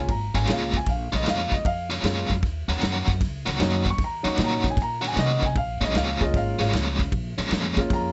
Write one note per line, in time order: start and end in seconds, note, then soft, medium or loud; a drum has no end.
0.08 0.32 G#1 medium
0.08 0.35 A#5 loud
0.08 kick loud
0.08 ride medium
0.34 0.46 G#1 medium
0.34 0.46 A#2 medium
0.34 0.47 G#3 medium
0.34 0.47 C#4 medium
0.34 0.47 F4 medium
0.34 0.48 G#5 medium
0.34 snare soft
0.34 ride medium
0.47 0.82 C#2 medium
0.47 0.78 A#2 medium
0.47 0.71 G#3 medium
0.47 0.78 G#3 medium
0.47 0.71 A#3 medium
0.47 0.78 C#4 medium
0.47 0.72 C#4 medium
0.47 0.78 F4 medium
0.47 0.72 F4 medium
0.47 0.75 F5 medium
0.47 snare loud
0.47 ride medium
0.74 0.88 G#5 medium
0.74 kick medium
0.74 snare soft
0.74 ride medium
0.86 1.10 A#1 medium
0.86 1.13 F5 medium
0.86 kick loud
0.86 snare soft
0.86 ride medium
1.12 1.24 A#1 medium
1.12 1.25 A#2 medium
1.12 1.25 G#3 medium
1.12 1.25 C#4 medium
1.12 1.26 F4 medium
1.12 1.27 D#5 medium
1.12 snare soft
1.12 ride medium
1.25 1.48 F2 medium
1.25 1.56 A#2 medium
1.25 1.56 G#3 medium
1.25 1.56 C#4 medium
1.25 1.57 F4 medium
1.25 1.53 F5 medium
1.25 snare loud
1.25 ride medium
1.52 1.64 F2 medium
1.52 1.66 D#5 medium
1.52 kick medium
1.52 snare soft
1.52 ride medium
1.65 2.00 F2 medium
1.65 2.41 F5 loud
1.65 kick loud
1.65 ride medium
1.90 2.03 A#2 medium
1.90 2.03 G#3 medium
1.90 2.04 C#4 medium
1.90 2.04 F4 loud
1.90 snare soft
1.90 ride medium
2.03 2.27 F#2 medium
2.03 2.34 A#2 medium
2.03 2.28 G#3 medium
2.03 2.34 G#3 medium
2.03 2.28 A#3 medium
2.03 2.28 C#4 medium
2.03 2.35 C#4 medium
2.03 2.35 F4 medium
2.03 2.28 F4 medium
2.03 snare loud
2.03 ride medium
2.30 2.43 F#2 medium
2.30 kick medium
2.30 snare soft
2.30 ride medium
2.43 2.66 D#2 medium
2.43 kick loud
2.43 snare soft
2.43 ride medium
2.68 2.80 D#2 medium
2.68 2.80 D#3 medium
2.68 2.81 A#3 medium
2.68 2.81 C#4 medium
2.68 2.81 F#4 medium
2.68 snare soft
2.68 ride medium
2.81 3.05 F#2 medium
2.81 3.12 D#3 medium
2.81 3.12 A#3 medium
2.81 3.12 C#4 medium
2.81 3.12 F#4 medium
2.81 snare loud
2.81 ride medium
3.07 3.19 F#2 medium
3.07 kick medium
3.07 snare soft
3.07 ride medium
3.21 3.44 C#2 medium
3.21 kick loud
3.21 snare soft
3.21 ride medium
3.46 3.59 C#2 medium
3.46 3.57 D#3 medium
3.46 3.58 A#3 medium
3.46 3.58 C#4 medium
3.46 3.58 F#4 medium
3.46 snare soft
3.46 ride medium
3.58 3.94 F#2 medium
3.58 3.89 D#3 medium
3.58 3.83 F#3 medium
3.58 3.90 A#3 medium
3.58 3.83 A#3 medium
3.58 3.90 C#4 medium
3.58 3.83 C#4 medium
3.58 3.84 D#4 medium
3.58 3.90 F#4 medium
3.58 snare loud
3.58 ride medium
3.86 kick medium
3.86 snare soft
3.86 ride medium
3.90 4.01 C#6 medium
3.98 4.22 D#2 medium
3.98 kick loud
3.98 snare soft
3.98 ride medium
4.04 4.27 A#5 medium
4.23 4.36 D#2 medium
4.23 4.35 D#3 medium
4.23 4.74 F#3 medium
4.23 4.74 A#3 medium
4.23 4.36 A#3 medium
4.23 4.74 C#4 medium
4.23 4.36 C#4 medium
4.23 4.74 D#4 medium
4.23 4.37 F#4 medium
4.23 snare soft
4.23 ride medium
4.28 4.39 C#6 medium
4.36 4.61 A#2 medium
4.36 4.67 D#3 medium
4.36 4.68 A#3 medium
4.36 4.68 C#4 medium
4.36 4.68 F#4 medium
4.36 snare loud
4.36 ride medium
4.44 4.67 A#5 loud
4.64 4.76 A#2 medium
4.64 kick medium
4.64 snare soft
4.64 ride medium
4.70 4.80 G#5 medium
4.77 5.12 A#2 medium
4.77 kick loud
4.77 snare soft
4.77 ride medium
4.82 5.05 A#5 loud
5.01 5.14 D#3 medium
5.01 5.15 A#3 medium
5.01 5.15 C#4 medium
5.01 5.15 F#4 loud
5.01 ride medium
5.06 5.18 G#5 medium
5.06 snare soft
5.16 5.39 C3 medium
5.16 5.46 D#3 medium
5.16 5.46 A#3 medium
5.16 5.46 C#4 medium
5.16 5.47 F#4 medium
5.16 5.43 D#5 medium
5.16 snare loud
5.16 ride medium
5.42 5.54 C3 medium
5.42 5.57 G#5 medium
5.42 kick medium
5.42 snare soft
5.42 ride medium
5.56 5.79 A#1 medium
5.56 5.82 F5 medium
5.56 kick loud
5.56 ride medium
5.81 5.93 A#1 medium
5.81 5.93 A#2 medium
5.81 5.93 F3 medium
5.81 5.94 G#3 medium
5.81 5.94 C#4 medium
5.81 5.96 D#5 medium
5.81 snare soft
5.81 ride medium
5.94 6.17 C#2 medium
5.94 6.24 A#2 medium
5.94 6.24 F3 medium
5.94 6.25 G#3 medium
5.94 6.25 C#4 medium
5.94 6.20 F5 medium
5.94 snare loud
5.94 ride medium
6.21 6.32 C#2 medium
6.21 6.57 G#3 medium
6.21 6.57 A#3 medium
6.21 6.57 C#4 medium
6.21 6.58 F4 medium
6.21 6.35 D#5 medium
6.21 kick medium
6.21 snare soft
6.21 ride medium
6.34 6.57 G#1 medium
6.34 7.11 F5 loud
6.34 kick loud
6.34 snare soft
6.34 ride medium
6.59 6.71 G#1 medium
6.59 6.72 A#2 medium
6.59 6.72 F3 medium
6.59 6.71 G#3 medium
6.59 6.73 G#3 loud
6.59 6.71 A#3 medium
6.59 6.72 C#4 medium
6.59 6.71 C#4 medium
6.59 6.72 F4 medium
6.59 snare soft
6.59 ride medium
6.73 7.07 C#2 loud
6.73 7.03 A#2 medium
6.73 7.03 F3 medium
6.73 7.03 G#3 medium
6.73 7.04 C#4 medium
6.73 snare loud
6.73 ride medium
6.99 kick medium
6.99 snare soft
6.99 ride medium
7.12 7.35 A#1 medium
7.12 kick loud
7.12 ride medium
7.38 7.50 A#1 medium
7.38 7.51 A#2 medium
7.38 7.52 F3 medium
7.38 7.51 G#3 medium
7.38 7.51 C#4 medium
7.38 snare soft
7.38 ride medium
7.51 7.74 F2 medium
7.51 7.82 A#2 medium
7.51 7.82 F3 medium
7.51 7.82 G#3 medium
7.51 7.82 C#4 medium
7.51 snare loud
7.51 ride loud
7.77 7.89 F2 medium
7.77 8.12 G#3 medium
7.77 8.12 A#3 medium
7.77 8.12 C#4 medium
7.77 8.12 F4 medium
7.77 kick medium
7.77 snare soft
7.77 ride medium
7.90 8.12 F2 loud
7.90 8.12 A#5 loud
7.90 kick loud
7.90 snare soft
7.90 ride medium